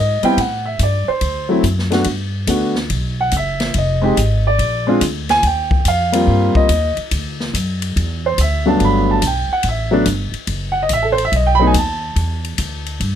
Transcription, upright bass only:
0, 0, Header, 1, 3, 480
1, 0, Start_track
1, 0, Tempo, 421053
1, 424, Time_signature, 4, 2, 24, 8
1, 14996, End_track
2, 0, Start_track
2, 0, Title_t, "Upright bass"
2, 0, Program_c, 0, 32
2, 0, Note_on_c, 0, 44, 89
2, 239, Note_off_c, 0, 44, 0
2, 423, Note_on_c, 0, 45, 75
2, 890, Note_off_c, 0, 45, 0
2, 902, Note_on_c, 0, 43, 80
2, 1200, Note_off_c, 0, 43, 0
2, 1382, Note_on_c, 0, 38, 78
2, 1851, Note_off_c, 0, 38, 0
2, 1858, Note_on_c, 0, 42, 86
2, 2329, Note_off_c, 0, 42, 0
2, 2339, Note_on_c, 0, 43, 82
2, 2810, Note_off_c, 0, 43, 0
2, 2817, Note_on_c, 0, 38, 76
2, 3289, Note_off_c, 0, 38, 0
2, 3308, Note_on_c, 0, 35, 82
2, 3775, Note_off_c, 0, 35, 0
2, 3789, Note_on_c, 0, 30, 77
2, 4255, Note_off_c, 0, 30, 0
2, 4270, Note_on_c, 0, 29, 84
2, 4736, Note_off_c, 0, 29, 0
2, 4749, Note_on_c, 0, 32, 86
2, 5215, Note_off_c, 0, 32, 0
2, 5226, Note_on_c, 0, 34, 82
2, 5694, Note_off_c, 0, 34, 0
2, 5716, Note_on_c, 0, 38, 87
2, 6179, Note_off_c, 0, 38, 0
2, 6190, Note_on_c, 0, 39, 85
2, 6656, Note_off_c, 0, 39, 0
2, 6667, Note_on_c, 0, 41, 83
2, 7134, Note_off_c, 0, 41, 0
2, 7151, Note_on_c, 0, 43, 86
2, 7445, Note_off_c, 0, 43, 0
2, 7625, Note_on_c, 0, 39, 100
2, 7922, Note_off_c, 0, 39, 0
2, 8109, Note_on_c, 0, 38, 80
2, 8574, Note_off_c, 0, 38, 0
2, 8590, Note_on_c, 0, 42, 87
2, 9054, Note_off_c, 0, 42, 0
2, 9077, Note_on_c, 0, 40, 97
2, 9538, Note_off_c, 0, 40, 0
2, 9552, Note_on_c, 0, 38, 83
2, 10015, Note_off_c, 0, 38, 0
2, 10037, Note_on_c, 0, 31, 87
2, 10497, Note_off_c, 0, 31, 0
2, 10506, Note_on_c, 0, 35, 74
2, 10801, Note_off_c, 0, 35, 0
2, 10988, Note_on_c, 0, 33, 86
2, 11452, Note_off_c, 0, 33, 0
2, 11467, Note_on_c, 0, 31, 92
2, 11757, Note_off_c, 0, 31, 0
2, 11938, Note_on_c, 0, 30, 81
2, 12406, Note_off_c, 0, 30, 0
2, 12419, Note_on_c, 0, 33, 73
2, 12886, Note_off_c, 0, 33, 0
2, 12906, Note_on_c, 0, 35, 86
2, 13369, Note_off_c, 0, 35, 0
2, 13382, Note_on_c, 0, 39, 93
2, 13847, Note_off_c, 0, 39, 0
2, 13859, Note_on_c, 0, 40, 84
2, 14326, Note_off_c, 0, 40, 0
2, 14346, Note_on_c, 0, 38, 78
2, 14809, Note_off_c, 0, 38, 0
2, 14821, Note_on_c, 0, 43, 93
2, 14996, Note_off_c, 0, 43, 0
2, 14996, End_track
3, 0, Start_track
3, 0, Title_t, "Muted upright bass strokes"
3, 260, Note_on_c, 9, 29, 45
3, 374, Note_off_c, 9, 29, 0
3, 1237, Note_on_c, 9, 29, 34
3, 1351, Note_off_c, 9, 29, 0
3, 7467, Note_on_c, 9, 29, 44
3, 7581, Note_off_c, 9, 29, 0
3, 7947, Note_on_c, 9, 29, 43
3, 8061, Note_off_c, 9, 29, 0
3, 10817, Note_on_c, 9, 29, 36
3, 10931, Note_off_c, 9, 29, 0
3, 11764, Note_on_c, 9, 29, 44
3, 11878, Note_off_c, 9, 29, 0
3, 14996, End_track
0, 0, End_of_file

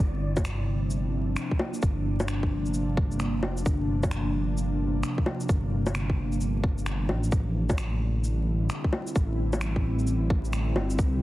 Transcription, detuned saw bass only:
0, 0, Header, 1, 2, 480
1, 0, Start_track
1, 0, Tempo, 458015
1, 1914, Time_signature, 4, 2, 24, 8
1, 11760, End_track
2, 0, Start_track
2, 0, Title_t, "Detuned saw bass"
2, 0, Program_c, 0, 39
2, 0, Note_on_c, 0, 31, 97
2, 1423, Note_off_c, 0, 31, 0
2, 1914, Note_on_c, 0, 31, 95
2, 3598, Note_on_c, 0, 29, 99
2, 3614, Note_off_c, 0, 31, 0
2, 3822, Note_off_c, 0, 29, 0
2, 3838, Note_on_c, 0, 31, 98
2, 5264, Note_off_c, 0, 31, 0
2, 5758, Note_on_c, 0, 31, 94
2, 7436, Note_on_c, 0, 33, 95
2, 7451, Note_off_c, 0, 31, 0
2, 7661, Note_off_c, 0, 33, 0
2, 7675, Note_on_c, 0, 33, 97
2, 9103, Note_off_c, 0, 33, 0
2, 9598, Note_on_c, 0, 33, 94
2, 11278, Note_on_c, 0, 31, 101
2, 11294, Note_off_c, 0, 33, 0
2, 11502, Note_off_c, 0, 31, 0
2, 11516, Note_on_c, 0, 36, 94
2, 11760, Note_off_c, 0, 36, 0
2, 11760, End_track
0, 0, End_of_file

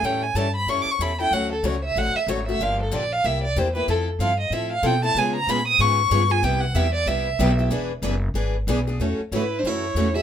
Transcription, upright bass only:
0, 0, Header, 1, 3, 480
1, 0, Start_track
1, 0, Tempo, 319829
1, 59, Time_signature, 4, 2, 24, 8
1, 15341, End_track
2, 0, Start_track
2, 0, Title_t, "Upright bass"
2, 0, Program_c, 0, 32
2, 30, Note_on_c, 0, 45, 81
2, 510, Note_off_c, 0, 45, 0
2, 519, Note_on_c, 0, 43, 89
2, 990, Note_off_c, 0, 43, 0
2, 999, Note_on_c, 0, 42, 91
2, 1270, Note_off_c, 0, 42, 0
2, 1484, Note_on_c, 0, 40, 93
2, 1957, Note_off_c, 0, 40, 0
2, 1966, Note_on_c, 0, 38, 87
2, 2433, Note_off_c, 0, 38, 0
2, 2442, Note_on_c, 0, 37, 90
2, 2916, Note_off_c, 0, 37, 0
2, 2934, Note_on_c, 0, 33, 89
2, 3202, Note_off_c, 0, 33, 0
2, 3402, Note_on_c, 0, 32, 104
2, 3877, Note_off_c, 0, 32, 0
2, 3894, Note_on_c, 0, 31, 83
2, 4363, Note_off_c, 0, 31, 0
2, 4382, Note_on_c, 0, 34, 92
2, 4847, Note_off_c, 0, 34, 0
2, 4868, Note_on_c, 0, 36, 92
2, 5330, Note_off_c, 0, 36, 0
2, 5343, Note_on_c, 0, 40, 95
2, 5808, Note_off_c, 0, 40, 0
2, 5820, Note_on_c, 0, 41, 83
2, 6279, Note_off_c, 0, 41, 0
2, 6288, Note_on_c, 0, 43, 92
2, 6751, Note_off_c, 0, 43, 0
2, 6760, Note_on_c, 0, 45, 93
2, 7235, Note_off_c, 0, 45, 0
2, 7246, Note_on_c, 0, 47, 99
2, 7718, Note_off_c, 0, 47, 0
2, 7727, Note_on_c, 0, 49, 90
2, 8199, Note_off_c, 0, 49, 0
2, 8212, Note_on_c, 0, 46, 98
2, 8676, Note_off_c, 0, 46, 0
2, 8685, Note_on_c, 0, 44, 86
2, 9157, Note_off_c, 0, 44, 0
2, 9166, Note_on_c, 0, 43, 101
2, 9634, Note_off_c, 0, 43, 0
2, 9643, Note_on_c, 0, 36, 91
2, 10112, Note_off_c, 0, 36, 0
2, 10121, Note_on_c, 0, 40, 103
2, 10587, Note_off_c, 0, 40, 0
2, 10596, Note_on_c, 0, 36, 85
2, 11071, Note_off_c, 0, 36, 0
2, 11093, Note_on_c, 0, 35, 111
2, 11560, Note_off_c, 0, 35, 0
2, 11567, Note_on_c, 0, 28, 83
2, 12026, Note_off_c, 0, 28, 0
2, 12035, Note_on_c, 0, 30, 97
2, 12511, Note_off_c, 0, 30, 0
2, 12517, Note_on_c, 0, 32, 98
2, 12991, Note_off_c, 0, 32, 0
2, 13012, Note_on_c, 0, 35, 102
2, 13479, Note_off_c, 0, 35, 0
2, 13504, Note_on_c, 0, 40, 72
2, 13765, Note_off_c, 0, 40, 0
2, 13982, Note_on_c, 0, 44, 85
2, 14444, Note_off_c, 0, 44, 0
2, 14461, Note_on_c, 0, 42, 88
2, 14920, Note_off_c, 0, 42, 0
2, 14929, Note_on_c, 0, 40, 93
2, 15341, Note_off_c, 0, 40, 0
2, 15341, End_track
3, 0, Start_track
3, 0, Title_t, "Muted upright bass strokes"
3, 1279, Note_on_c, 9, 29, 46
3, 1429, Note_off_c, 9, 29, 0
3, 3219, Note_on_c, 9, 29, 41
3, 3369, Note_off_c, 9, 29, 0
3, 13800, Note_on_c, 9, 29, 39
3, 13950, Note_off_c, 9, 29, 0
3, 15341, End_track
0, 0, End_of_file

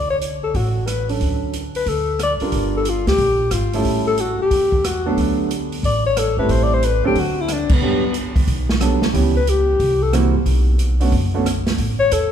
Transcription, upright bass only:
0, 0, Header, 1, 3, 480
1, 0, Start_track
1, 0, Key_signature, 2, "major"
1, 0, Tempo, 330579
1, 1745, Time_signature, 4, 2, 24, 8
1, 17887, End_track
2, 0, Start_track
2, 0, Title_t, "Upright bass"
2, 0, Program_c, 0, 32
2, 0, Note_on_c, 0, 38, 77
2, 737, Note_off_c, 0, 38, 0
2, 793, Note_on_c, 0, 33, 87
2, 1702, Note_off_c, 0, 33, 0
2, 1756, Note_on_c, 0, 38, 72
2, 2664, Note_off_c, 0, 38, 0
2, 2702, Note_on_c, 0, 38, 74
2, 3439, Note_off_c, 0, 38, 0
2, 3666, Note_on_c, 0, 31, 81
2, 4401, Note_off_c, 0, 31, 0
2, 4448, Note_on_c, 0, 38, 70
2, 4611, Note_off_c, 0, 38, 0
2, 4625, Note_on_c, 0, 34, 89
2, 5072, Note_off_c, 0, 34, 0
2, 5096, Note_on_c, 0, 32, 71
2, 5547, Note_off_c, 0, 32, 0
2, 5582, Note_on_c, 0, 33, 77
2, 6318, Note_off_c, 0, 33, 0
2, 6545, Note_on_c, 0, 40, 88
2, 7456, Note_off_c, 0, 40, 0
2, 7517, Note_on_c, 0, 38, 81
2, 8423, Note_off_c, 0, 38, 0
2, 8464, Note_on_c, 0, 33, 82
2, 9198, Note_off_c, 0, 33, 0
2, 9250, Note_on_c, 0, 31, 68
2, 9410, Note_off_c, 0, 31, 0
2, 9426, Note_on_c, 0, 33, 79
2, 10160, Note_off_c, 0, 33, 0
2, 10219, Note_on_c, 0, 39, 67
2, 10376, Note_off_c, 0, 39, 0
2, 10396, Note_on_c, 0, 38, 86
2, 11125, Note_off_c, 0, 38, 0
2, 11176, Note_on_c, 0, 38, 68
2, 11334, Note_off_c, 0, 38, 0
2, 11365, Note_on_c, 0, 31, 74
2, 12268, Note_off_c, 0, 31, 0
2, 12305, Note_on_c, 0, 35, 87
2, 13040, Note_off_c, 0, 35, 0
2, 13270, Note_on_c, 0, 37, 74
2, 14181, Note_off_c, 0, 37, 0
2, 14225, Note_on_c, 0, 36, 85
2, 14960, Note_off_c, 0, 36, 0
2, 15019, Note_on_c, 0, 42, 76
2, 15176, Note_off_c, 0, 42, 0
2, 15187, Note_on_c, 0, 35, 82
2, 16098, Note_off_c, 0, 35, 0
2, 16147, Note_on_c, 0, 30, 92
2, 17056, Note_off_c, 0, 30, 0
2, 17102, Note_on_c, 0, 33, 78
2, 17548, Note_off_c, 0, 33, 0
2, 17592, Note_on_c, 0, 40, 75
2, 17887, Note_off_c, 0, 40, 0
2, 17887, End_track
3, 0, Start_track
3, 0, Title_t, "Muted upright bass strokes"
3, 3500, Note_on_c, 9, 29, 32
3, 3646, Note_off_c, 9, 29, 0
3, 6374, Note_on_c, 9, 29, 39
3, 6520, Note_off_c, 9, 29, 0
3, 13097, Note_on_c, 9, 29, 42
3, 13242, Note_off_c, 9, 29, 0
3, 17887, End_track
0, 0, End_of_file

